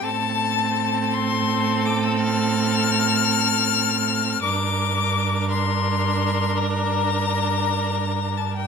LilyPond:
<<
  \new Staff \with { instrumentName = "Violin" } { \time 12/8 \key f \major \tempo 4. = 55 a''4. c'''4 d'''16 e'''16 f'''2. | d'''4. c'''4. bes''2~ bes''8 a''16 g''16 | }
  \new Staff \with { instrumentName = "Violin" } { \time 12/8 \key f \major a'1. | bes'1. | }
  \new Staff \with { instrumentName = "Viola" } { \time 12/8 \key f \major c'1. | d'1. | }
  \new Staff \with { instrumentName = "Cello" } { \clef bass \time 12/8 \key f \major a,1. | g,1. | }
>>